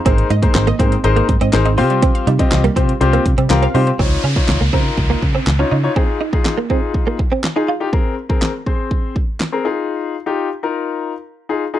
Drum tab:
HH |xxxxxxxxxxxxxxox|xxxxxxxxxxxxxxox|----------------|----------------|
CP |----x-------x---|----x-------x---|----x-------x---|----x-------x---|
SD |----o-------o---|----o-------o---|----o-------o---|----o-------o---|
BD |o--o--o---o-----|o--o--o---o-----|o--o--o-o-o-----|o--o--o-o-o-----|

HH |----------------|----------------|
CP |----x-------x---|----------------|
SD |----o-------o---|----------------|
BD |o--o--o-o-o-----|----------------|